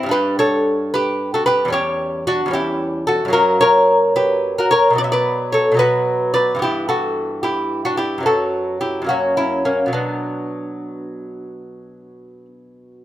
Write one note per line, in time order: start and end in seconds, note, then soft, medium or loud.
0.00 1.64 G2 medium
0.00 0.11 E4 loud
0.06 1.66 G3 medium
0.06 1.67 D4 medium
0.11 0.37 G4 medium
0.11 0.37 B4 loud
0.39 0.89 A4 medium
0.39 0.90 C#5 loud
0.94 1.31 G4 medium
0.94 1.31 B4 loud
1.34 1.46 F#4 medium
1.34 1.45 A4 medium
1.46 1.71 G4 medium
1.46 1.71 B4 loud
1.65 2.45 E2 medium
1.65 2.47 G3 medium
1.70 2.28 C#4 soft
1.70 2.23 G4 medium
1.70 2.24 C#5 loud
2.27 2.50 D4 medium
2.27 2.52 F#4 loud
2.46 3.25 E2 medium
2.46 3.29 G3 medium
2.51 3.30 C#4 medium
2.51 3.04 E4 medium
2.51 3.05 G4 medium
3.07 3.33 F#4 medium
3.07 3.32 A4 loud
3.25 4.88 F#2 medium
3.25 4.90 F#3 medium
3.30 4.91 A#3 medium
3.30 3.59 F#4 medium
3.30 3.59 A#4 loud
3.61 4.12 A#4 medium
3.61 4.13 C#5 loud
4.16 4.54 G4 medium
4.16 4.55 B4 loud
4.58 4.71 F#4 medium
4.58 4.71 A#4 medium
4.71 4.96 A#4 medium
4.71 4.96 C#5 loud
4.90 5.70 B2 medium
4.90 5.73 F#3 soft
4.95 5.75 B3 soft
4.95 5.04 D5 loud
5.04 5.11 E5 medium
5.12 5.50 B4 medium
5.12 5.50 D5 loud
5.52 5.78 A4 medium
5.52 5.78 C#5 medium
5.72 6.55 B2 medium
5.72 6.56 F#3 medium
5.77 6.57 B3 medium
5.77 6.31 F#4 medium
5.77 6.32 B4 loud
6.34 6.60 B4 medium
6.34 6.60 D5 loud
6.55 8.17 G2 medium
6.55 8.18 E3 soft
6.59 8.19 B3 soft
6.59 6.88 G4 medium
6.63 6.87 E4 medium
6.89 7.40 F#4 medium
6.89 7.41 A4 medium
7.43 7.81 E4 medium
7.43 7.82 G4 medium
7.85 7.97 D4 medium
7.85 7.98 F#4 medium
7.97 8.23 E4 medium
7.97 8.23 G4 medium
8.18 9.01 F#2 soft
8.18 9.03 F#3 soft
8.23 9.04 B3 soft
8.23 8.77 F#4 medium
8.23 8.78 A4 medium
8.81 9.06 E4 medium
8.81 9.07 G4 medium
9.02 9.87 F#2 medium
9.02 9.87 F#3 soft
9.06 9.64 A#3 soft
9.06 9.35 C#4 medium
9.06 9.35 F#4 medium
9.37 9.63 C#4 medium
9.37 9.63 E4 medium
9.65 9.91 A#3 medium
9.65 9.92 C#4 medium
9.86 13.05 B2 soft
9.86 13.05 F#3 soft
9.93 12.46 B3 medium
9.93 12.45 D4 medium